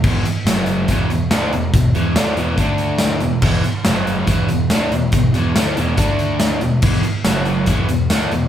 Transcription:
0.04 picked electric bass E1, distorted electric guitar E2 B2 E3, kick, crash
0.25 muted distorted electric guitar stroke, muted picked electric bass stroke, muted overdriven electric guitar stroke, closed hi-hat
0.45 picked electric bass F#1, distorted electric guitar F#2 C#3 F#3, snare, closed hi-hat, tambourine
0.57 snare
0.66 closed hi-hat
0.88 picked electric bass E1, distorted electric guitar E2 B2 E3, kick, closed hi-hat
1.09 picked electric bass E1, distorted electric guitar E2 B2, closed hi-hat
1.31 picked electric bass D2, distorted electric guitar D3 A3 D4, snare, closed hi-hat, tambourine
1.51 picked electric bass E1, distorted electric guitar E2 B2, closed hi-hat
1.74 picked electric bass E1, distorted electric guitar E2 B2, kick, closed hi-hat
1.94 picked electric bass E1, distorted electric guitar E2 B2 E3, closed hi-hat
2.15 picked electric bass D2, distorted electric guitar D3 A3 D4, snare, closed hi-hat, tambourine
2.35 picked electric bass E1, distorted electric guitar E2 B2 E3, closed hi-hat
2.56 picked electric bass D2, distorted electric guitar D3 A3 D4, kick, closed hi-hat
2.78 closed hi-hat
2.98 snare, closed hi-hat, tambourine
3.20 picked electric bass E1, distorted electric guitar E2 B2, closed hi-hat
3.42 picked electric bass E1, distorted electric guitar E2 B2 E3, kick, crash
3.64 muted distorted electric guitar stroke, muted overdriven electric guitar stroke, muted picked electric bass stroke, closed hi-hat
3.84 picked electric bass F#1, distorted electric guitar F#2 C#3 F#3, snare, closed hi-hat, tambourine
4.07 closed hi-hat
4.26 picked electric bass E1, distorted electric guitar E2 B2 E3, kick, closed hi-hat
4.48 picked electric bass E1, distorted electric guitar E2 B2, closed hi-hat
4.70 picked electric bass D2, distorted electric guitar D3 A3 D4, snare, closed hi-hat, tambourine
4.92 picked electric bass E1, distorted electric guitar E2 B2, closed hi-hat
5.12 picked electric bass E1, distorted electric guitar E2 B2, kick, closed hi-hat
5.33 picked electric bass E1, distorted electric guitar E2 B2 E3, closed hi-hat
5.55 picked electric bass D2, distorted electric guitar D3 A3 D4, snare, closed hi-hat, tambourine
5.76 picked electric bass E1, distorted electric guitar E2 B2 E3, closed hi-hat
5.96 picked electric bass D2, distorted electric guitar D3 A3 D4, kick, closed hi-hat
6.19 closed hi-hat
6.40 snare, closed hi-hat, tambourine
6.61 picked electric bass E1, distorted electric guitar E2 B2, closed hi-hat
6.82 picked electric bass E1, distorted electric guitar E2 B2 E3, kick, crash
7.03 muted distorted electric guitar stroke, muted picked electric bass stroke, muted overdriven electric guitar stroke, closed hi-hat
7.24 picked electric bass F#1, distorted electric guitar F#2 C#3 F#3, snare, closed hi-hat, tambourine
7.45 closed hi-hat
7.66 picked electric bass E1, distorted electric guitar E2 B2 E3, kick, closed hi-hat
7.89 picked electric bass E1, distorted electric guitar E2 B2, closed hi-hat
8.10 picked electric bass D2, distorted electric guitar D3 A3 D4, snare, closed hi-hat, tambourine
8.30 picked electric bass E1, distorted electric guitar E2 B2, closed hi-hat

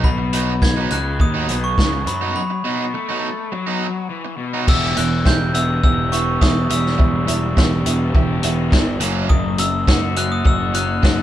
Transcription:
0.04 picked electric bass B1, overdriven electric guitar B2, glockenspiel B5, kick
0.18 muted overdriven electric guitar stroke
0.33 overdriven electric guitar F#3 B3 D#4, closed hi-hat
0.62 glockenspiel G#6, muted overdriven electric guitar stroke, kick, snare
0.76 overdriven electric guitar F#3 B3 D#4
0.90 picked electric bass C#2, overdriven electric guitar C#3, glockenspiel F#6, closed hi-hat
1.19 picked electric bass D#2, overdriven electric guitar D#3, glockenspiel D#6, muted overdriven electric guitar stroke, kick
1.34 overdriven electric guitar F#3 B3 D#4
1.49 picked electric bass B1, overdriven electric guitar B2, closed hi-hat
1.64 glockenspiel C#6
1.78 picked electric bass C#2, overdriven electric guitar C#3, kick, snare
1.92 muted overdriven electric guitar stroke
2.06 picked electric bass F#2, overdriven electric guitar F#3, glockenspiel B5, closed hi-hat
2.21 overdriven electric guitar F#3 B3 D#4
2.36 glockenspiel B5
2.50 muted overdriven electric guitar stroke
2.64 overdriven electric guitar B2 F#3 B3 D#4
2.94 overdriven electric guitar A3, muted overdriven electric guitar stroke
3.09 overdriven electric guitar F#3 B3 D#4
3.52 overdriven electric guitar F#3, muted overdriven electric guitar stroke
3.67 overdriven electric guitar F#3 B3 D#4
4.10 overdriven electric guitar E3
4.25 muted overdriven electric guitar stroke
4.37 overdriven electric guitar B2
4.54 overdriven electric guitar F#3 B3 D#4
4.67 picked electric bass E1, overdriven electric guitar E2 B3 E4 G4, glockenspiel E6, kick, crash
4.96 picked electric bass E1, overdriven electric guitar B3 E4, glockenspiel F#6, closed hi-hat
5.25 picked electric bass E1, overdriven electric guitar B3 E4 G4, glockenspiel G6, kick, snare
5.54 overdriven electric guitar B3 E4, glockenspiel E6, closed hi-hat
5.83 picked electric bass E1, overdriven electric guitar B3 E4 G4, glockenspiel E6, kick
6.12 overdriven electric guitar B3 E4, glockenspiel C#6, closed hi-hat
6.41 picked electric bass E1, overdriven electric guitar E3 B3 E4, glockenspiel D#6, kick, snare
6.69 picked electric bass E1, overdriven electric guitar G3 B3 E4, glockenspiel E6, closed hi-hat
6.86 snare
6.98 picked electric bass E1, overdriven electric guitar E2 B3 E4, kick
7.27 picked electric bass E1, overdriven electric guitar B3 E4, closed hi-hat
7.57 picked electric bass E1, overdriven electric guitar B3 E4 G4, kick, snare
7.85 picked electric bass E1, overdriven electric guitar B3 E4, closed hi-hat
8.14 picked electric bass E1, overdriven electric guitar B3 E4 G4, kick
8.43 picked electric bass E1, overdriven electric guitar B3 E4, closed hi-hat
8.72 picked electric bass G1, overdriven electric guitar E3 B3 E4, kick, snare
9.00 picked electric bass F#1, overdriven electric guitar F#2 F#3 A#3 C#4, closed hi-hat
9.29 picked electric bass F#1, overdriven electric guitar F#2 F#3 A#3, glockenspiel D#6, kick
9.58 picked electric bass F#1, overdriven electric guitar F#3 A#3, glockenspiel E6, closed hi-hat
9.87 picked electric bass F#1, overdriven electric guitar F#3 A#3 F#4, kick, snare
10.16 overdriven electric guitar F#3 A#3 C#4, glockenspiel F#6, closed hi-hat
10.32 glockenspiel D#6
10.45 picked electric bass F#1, overdriven electric guitar F#3 A#3 F#4, glockenspiel E6, kick
10.74 overdriven electric guitar F#3 A#3 C#4, glockenspiel F#6, closed hi-hat
11.03 picked electric bass F#1, overdriven electric guitar F#3 A#3, kick, snare

